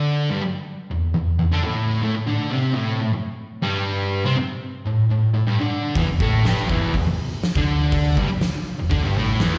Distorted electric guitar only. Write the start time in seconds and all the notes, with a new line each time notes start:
Already playing: D3 D4
0.30 G2 G3
0.43 muted distorted electric guitar stroke
0.91 E2
1.14 E2
1.39 E2
1.51 D3 D4
1.64 A2 A3
2.02 A2 A3
2.15 A2
2.27 D3 D4
2.51 C3 C4
2.74 A2 A3
3.01 A2
3.13 muted distorted electric guitar stroke
3.62 G2 G3
4.25 C3 C4
4.38 muted distorted electric guitar stroke
4.86 A2
5.11 A2
5.34 A2
5.47 G2 G3
5.59 D3 D4
5.95 E2 E3
6.06 E2
6.20 A2 A3
6.44 G2 G3
6.68 E2 E3
6.94 E2
7.07 muted distorted electric guitar stroke
7.57 D3 D4
8.17 G2 G3
8.29 muted distorted electric guitar stroke
8.79 E2
8.90 D3 D4
9.03 G2 G3
9.15 A2 A3
9.40 E2 E3